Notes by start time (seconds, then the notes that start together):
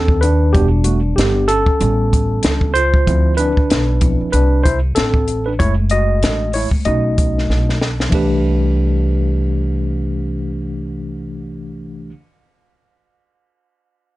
Already playing: D#2 C4 A4
0.08 kick
0.21 D4 B4, closed hi-hat
0.53 E1 G3 B3 D4 F#4 G4, kick, closed hi-hat
0.84 A3 F#4, closed hi-hat
1.16 G1 B3 G4, snare, closed hi-hat
1.48 C#4 A4, closed hi-hat
1.66 muted upright bass stroke, kick
1.80 A1 G3 B3 C#4, closed hi-hat
2.13 kick, closed hi-hat
2.43 C#2, snare, closed hi-hat
2.61 kick
2.74 F4 C5, closed hi-hat
2.94 kick
3.06 D2 F3 C4 E4, kick, closed hi-hat
3.37 D4 B4, closed hi-hat
3.57 kick
3.70 B1, snare, closed hi-hat
4.01 F3 C4 E4, kick, closed hi-hat
4.21 muted upright bass stroke
4.32 C2 D4 B4, closed hi-hat
4.64 E4 C5, kick, closed hi-hat
4.95 A1 C4 A4, snare, closed hi-hat
5.14 kick
5.28 closed hi-hat
5.46 D4 B4
5.59 F#1 G#3 A3 E4 C#5, kick, closed hi-hat
5.90 F#4 D#5, closed hi-hat
6.23 A1, snare, closed hi-hat
6.53 E4 C#5, open hi-hat
6.71 muted upright bass stroke, kick
6.85 B1 A3 C#4 D#4 F#4 D#5, closed hi-hat
7.18 kick, closed hi-hat
7.38 snare
7.50 B1, snare
7.69 snare
7.82 snare
8.00 snare
8.09 C2 E3 A3 D4, kick, ride
8.13 G4 B4